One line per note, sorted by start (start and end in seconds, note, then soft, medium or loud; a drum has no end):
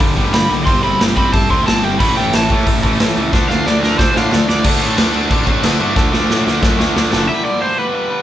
0.00 0.17 G1 medium
0.00 0.15 G2 medium
0.00 0.16 D3 medium
0.00 0.14 G3 medium
0.00 kick loud
0.00 open hi-hat medium
0.16 0.33 G1 medium
0.16 0.32 G2 medium
0.16 0.32 D3 medium
0.16 0.33 G3 loud
0.16 kick medium
0.33 0.49 G2 loud
0.33 0.49 G2 medium
0.33 0.49 D3 medium
0.33 0.49 G3 loud
0.33 0.50 B5 loud
0.33 snare loud
0.33 open hi-hat medium
0.50 0.68 B1 medium
0.50 0.65 G2 medium
0.50 0.66 D3 medium
0.50 0.66 G3 medium
0.66 0.82 G1 medium
0.66 0.82 C3 medium
0.66 0.82 G3 medium
0.66 0.84 C4 medium
0.66 0.83 C6 loud
0.66 kick loud
0.66 open hi-hat medium
0.83 0.99 G1 medium
0.83 0.99 C3 medium
0.83 0.99 G3 medium
0.83 0.99 C4 loud
0.83 1.00 B5 medium
1.00 1.32 G1 medium
1.00 1.15 C3 medium
1.00 1.16 G3 medium
1.00 1.15 C4 medium
1.00 snare loud
1.00 open hi-hat medium
1.17 1.32 C3 loud
1.17 1.32 G3 medium
1.17 1.33 C4 loud
1.17 1.33 B5 medium
1.17 kick medium
1.33 1.49 G1 medium
1.33 1.48 C3 medium
1.33 1.49 G3 medium
1.33 1.48 C4 medium
1.33 1.50 A5 medium
1.33 kick loud
1.33 open hi-hat medium
1.49 1.66 D2 medium
1.49 1.66 C3 medium
1.49 1.66 G3 loud
1.49 1.66 C4 loud
1.49 1.66 C6 medium
1.49 kick medium
1.67 1.83 G1 medium
1.67 1.82 C3 medium
1.67 1.82 G3 loud
1.67 1.82 C4 loud
1.67 1.84 A5 loud
1.67 snare loud
1.67 open hi-hat medium
1.83 1.99 G1 medium
1.83 1.99 C3 medium
1.83 1.99 G3 medium
1.83 1.99 C4 medium
1.83 2.00 G5 medium
1.99 2.16 A1 medium
1.99 2.15 A2 medium
1.99 2.16 E3 medium
1.99 2.16 A3 loud
1.99 2.16 B5 loud
1.99 kick loud
1.99 crash loud
2.17 2.33 A1 medium
2.17 2.32 A2 medium
2.17 2.32 E3 medium
2.17 2.34 A3 loud
2.17 2.34 G5 medium
2.33 2.49 A1 medium
2.33 2.49 A2 medium
2.33 2.49 E3 medium
2.33 2.50 A3 loud
2.33 3.30 A5 medium
2.33 snare loud
2.33 open hi-hat medium
2.50 2.65 A2 loud
2.50 2.66 A2 medium
2.50 2.66 E3 loud
2.50 2.66 A3 loud
2.50 kick loud
2.66 2.82 A1 medium
2.66 2.82 A2 medium
2.66 2.82 E3 medium
2.66 2.83 A3 medium
2.66 kick loud
2.66 open hi-hat medium
2.83 2.99 A1 medium
2.83 2.99 A2 medium
2.83 2.99 E3 loud
2.83 2.99 A3 loud
2.83 kick medium
3.00 3.16 A2 loud
3.00 3.15 A2 medium
3.00 3.15 E3 loud
3.00 3.16 A3 loud
3.00 snare loud
3.00 open hi-hat medium
3.16 3.32 C#2 medium
3.16 3.32 A2 medium
3.16 3.32 E3 medium
3.16 3.33 A3 medium
3.33 3.49 D2 loud
3.33 3.49 D3 loud
3.33 3.49 A3 loud
3.33 3.49 D4 loud
3.33 kick loud
3.33 snare medium
3.48 3.66 D2 loud
3.48 3.65 D3 medium
3.48 3.65 A3 medium
3.48 3.65 D4 loud
3.48 3.66 F5 loud
3.48 snare medium
3.66 3.98 D2 medium
3.66 3.82 D3 medium
3.66 3.82 A3 medium
3.66 3.79 D4 medium
3.66 3.82 D5 medium
3.66 snare medium
3.83 3.98 D3 medium
3.83 3.99 A3 loud
3.83 3.99 D4 loud
3.83 3.99 A#4 medium
3.83 snare medium
3.99 4.15 D2 medium
3.99 4.14 D3 medium
3.99 4.15 A3 medium
3.99 4.13 D4 medium
3.99 4.15 C5 medium
3.99 kick loud
3.99 snare loud
4.16 4.32 A2 medium
4.16 4.31 D3 loud
4.16 4.32 A3 medium
4.16 4.32 D4 loud
4.16 4.34 F5 loud
4.16 snare medium
4.32 4.49 D2 loud
4.32 4.47 D3 medium
4.32 4.47 A3 loud
4.32 4.47 D4 loud
4.32 4.48 D5 medium
4.32 snare loud
4.48 4.64 D2 medium
4.48 4.63 D3 medium
4.48 4.63 A3 medium
4.48 4.64 D4 medium
4.48 4.65 D5 loud
4.48 snare medium
4.64 4.80 D2 loud
4.64 4.82 D3 loud
4.64 4.81 A3 loud
4.64 4.81 D4 loud
4.64 kick loud
4.64 crash loud
4.64 crash medium
4.81 4.98 A2 loud
4.81 4.97 D3 medium
4.81 4.98 A3 medium
4.81 4.98 D4 medium
4.81 crash medium
4.97 5.14 D2 medium
4.97 5.16 D3 medium
4.97 5.15 A3 medium
4.97 5.14 D4 medium
4.97 snare loud
4.97 crash loud
5.14 5.30 D2 medium
5.14 5.29 D3 medium
5.14 5.30 A3 medium
5.14 5.31 D4 loud
5.14 crash medium
5.30 5.62 A1 medium
5.30 5.48 D3 loud
5.30 5.48 A3 loud
5.30 5.47 D4 loud
5.30 kick loud
5.30 crash medium
5.47 5.62 D3 medium
5.47 5.64 A3 medium
5.47 5.65 D4 loud
5.47 kick medium
5.47 crash medium
5.63 5.80 D2 loud
5.63 5.81 D3 medium
5.63 5.80 A3 loud
5.63 5.80 D4 loud
5.63 snare loud
5.63 crash medium
5.80 5.96 G2 medium
5.80 5.95 D3 medium
5.80 5.95 A3 medium
5.80 5.96 D4 loud
5.80 crash medium
5.96 6.12 D2 loud
5.96 6.13 D3 loud
5.96 6.12 A3 loud
5.96 6.11 D4 loud
5.96 kick loud
5.96 snare medium
6.13 6.29 D2 loud
6.13 6.28 D3 medium
6.13 6.29 A3 medium
6.13 6.29 D4 loud
6.13 snare medium
6.30 6.45 A2 loud
6.30 6.46 D3 medium
6.30 6.46 A3 medium
6.30 6.45 D4 loud
6.30 snare medium
6.46 6.62 D2 medium
6.46 6.62 D3 medium
6.46 6.63 A3 loud
6.46 6.63 D4 loud
6.46 snare medium
6.63 6.78 F#2 medium
6.63 6.80 D3 medium
6.63 6.80 A3 loud
6.63 6.79 D4 loud
6.63 kick loud
6.63 snare loud
6.80 6.95 D2 medium
6.80 6.95 D3 medium
6.80 6.96 A3 loud
6.80 6.96 D4 loud
6.80 snare medium
6.96 7.11 D2 loud
6.96 7.12 D3 medium
6.96 7.11 A3 loud
6.96 7.11 D4 loud
6.96 snare medium
7.12 7.27 F#1 medium
7.12 7.28 D3 medium
7.12 7.27 A3 medium
7.12 7.27 D4 medium
7.12 snare medium
7.28 7.46 G2 medium
7.28 7.44 D3 loud
7.28 7.45 G3 loud
7.28 7.45 E5 loud
7.45 7.60 G2 medium
7.45 7.60 D3 medium
7.45 7.61 G3 medium
7.45 7.60 D5 medium
7.60 7.77 G2 medium
7.60 7.77 D3 loud
7.60 7.77 G3 loud
7.60 7.78 C5 medium
7.77 7.92 G2 medium
7.77 7.93 D3 medium
7.77 7.94 G3 medium
7.77 8.22 B4 medium
7.93 8.09 G2 loud
7.93 8.09 D3 medium
7.93 8.09 G3 loud
8.10 8.22 G2 medium
8.10 8.22 D3 medium
8.10 8.22 G3 loud